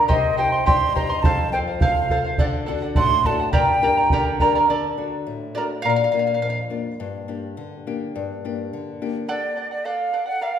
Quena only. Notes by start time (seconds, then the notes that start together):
0.09 D#5
0.38 G5
0.67 C6
0.96 A#5
1.23 A5
1.52 G5
1.81 F5
2.38 D5
2.97 C6
3.26 A5
3.53 G5
9.28 D5
9.72 D5
9.85 F5
10.28 F#5
10.43 F5